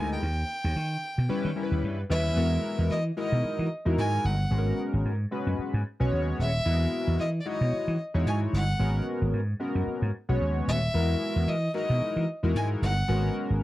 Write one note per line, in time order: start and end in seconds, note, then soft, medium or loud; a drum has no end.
0.00 0.16 D2 loud
0.00 0.22 G#3 medium
0.00 0.23 D#4 medium
0.00 0.23 E4 medium
0.00 0.23 A#4 medium
0.00 0.12 G#5 loud
0.13 1.80 G5 loud
0.23 0.42 D#2 medium
0.64 0.73 D#2 medium
0.76 0.96 D#3 loud
1.18 1.27 B2 medium
1.29 1.50 G3 loud
1.29 1.50 C#4 loud
1.29 1.50 E4 medium
1.29 1.51 B4 loud
1.29 muted slap bass stroke soft
1.45 1.53 D#3 medium
1.56 1.98 G3 medium
1.56 1.98 C#4 medium
1.56 1.98 E4 medium
1.56 1.64 A#4 medium
1.63 2.01 B4 medium
1.71 1.80 D#2 medium
1.83 2.03 G2 loud
2.10 2.30 D#2 medium
2.10 2.37 G3 medium
2.10 2.37 C#4 medium
2.10 2.35 E4 medium
2.10 2.37 B4 loud
2.10 2.87 E5 loud
2.36 2.57 E2 loud
2.36 2.97 G#3 medium
2.36 2.97 B3 medium
2.36 2.97 E4 medium
2.36 2.97 F#4 medium
2.36 2.98 A#4 medium
2.79 2.87 E2 loud
2.90 3.10 E3 loud
2.90 3.03 D#5 loud
3.17 3.67 G#3 medium
3.17 3.67 D#4 medium
3.17 3.68 E4 medium
3.17 3.68 F#4 medium
3.17 3.68 A#4 medium
3.17 3.68 D#5 loud
3.32 3.41 B2 medium
3.44 muted slap bass stroke soft
3.59 3.68 E3 medium
3.85 3.95 E2 loud
3.85 4.35 G#3 medium
3.85 4.35 D#4 medium
3.85 4.35 E4 medium
3.85 4.35 F#4 medium
3.85 4.35 A#4 loud
3.98 4.18 G#2 medium
3.98 4.27 G#5 loud
4.24 4.44 G1 loud
4.24 4.79 F#5 loud
4.51 4.71 G#1 loud
4.51 5.12 G#3 medium
4.51 5.12 B3 medium
4.51 5.12 C#4 medium
4.51 5.12 F#4 medium
4.51 4.59 G#4 medium
4.58 5.15 A#4 medium
4.93 5.02 G#1 loud
5.05 5.25 G#2 loud
5.31 5.82 G#3 medium
5.31 5.82 B3 medium
5.31 5.82 C#4 medium
5.31 5.82 F#4 medium
5.31 5.82 B4 loud
5.47 5.55 F#2 medium
5.59 muted slap bass stroke soft
5.74 5.82 G#2 medium
6.00 6.09 B1 loud
6.00 6.49 G#3 loud
6.00 6.50 B3 loud
6.00 6.50 C#4 medium
6.00 6.50 F#4 loud
6.00 6.50 C#5 loud
6.12 6.32 D#2 loud
6.39 6.59 D#1 loud
6.39 7.16 E5 loud
6.65 6.86 E2 loud
6.65 7.26 G#3 medium
6.65 7.26 B3 medium
6.65 7.26 E4 medium
6.65 7.26 F#4 medium
6.65 7.26 A#4 medium
7.07 7.16 E2 loud
7.20 7.39 E3 loud
7.20 7.29 D#5 loud
7.41 7.49 D5 medium
7.45 7.96 G#3 medium
7.45 7.96 D#4 medium
7.45 7.96 E4 medium
7.45 7.96 F#4 medium
7.45 7.96 C#5 medium
7.45 8.00 D#5 medium
7.61 7.70 B2 loud
7.73 muted slap bass stroke soft
7.88 7.96 E3 medium
8.14 8.23 E2 loud
8.14 8.64 G#3 medium
8.14 8.64 D#4 medium
8.14 8.64 E4 medium
8.14 8.64 F#4 medium
8.14 8.64 C#5 loud
8.26 8.46 G#2 loud
8.26 8.39 G#5 loud
8.53 8.73 G1 loud
8.53 9.04 F#5 loud
8.79 9.00 G#1 loud
8.79 9.40 G#3 medium
8.79 9.40 B3 medium
8.79 9.40 C#4 medium
8.79 9.40 F#4 medium
8.79 9.41 A#4 medium
9.22 9.30 G#1 loud
9.33 9.53 G#2 loud
9.60 10.10 G#3 medium
9.60 10.10 B3 medium
9.60 10.10 C#4 medium
9.60 10.11 F#4 medium
9.60 10.11 A#4 loud
9.75 9.84 F#2 medium
9.87 muted slap bass stroke soft
10.02 10.11 G#2 loud
10.29 10.38 B1 loud
10.29 10.78 G#3 loud
10.29 10.78 B3 loud
10.29 10.78 C#4 medium
10.29 10.78 F#4 loud
10.29 10.78 C#5 loud
10.41 10.60 D#2 loud
10.67 10.87 D#1 loud
10.67 11.50 E5 loud
10.94 11.14 E2 loud
10.94 11.54 G#3 medium
10.94 11.55 B3 medium
10.94 11.55 E4 medium
10.94 11.55 F#4 medium
10.94 11.55 A#4 medium
11.36 11.45 E2 loud
11.48 11.67 E3 loud
11.48 11.75 D#5 loud
11.74 12.25 G#3 medium
11.74 12.25 D#4 medium
11.74 12.25 E4 medium
11.74 12.25 F#4 medium
11.74 12.25 A#4 medium
11.74 12.25 D#5 loud
11.90 11.98 B2 medium
12.01 muted slap bass stroke soft
12.16 12.25 E3 medium
12.43 12.52 E2 loud
12.43 12.92 G#3 medium
12.43 12.93 D#4 medium
12.43 12.93 E4 medium
12.43 12.93 F#4 medium
12.43 12.93 A#4 medium
12.55 12.75 G#2 loud
12.55 12.68 G#5 loud
12.82 13.02 G1 loud
12.82 13.32 F#5 loud
13.08 13.28 G#1 loud
13.08 13.63 G#3 medium
13.08 13.63 B3 medium
13.08 13.63 C#4 medium
13.08 13.63 F#4 medium
13.08 13.63 A#4 medium
13.50 13.59 G#1 loud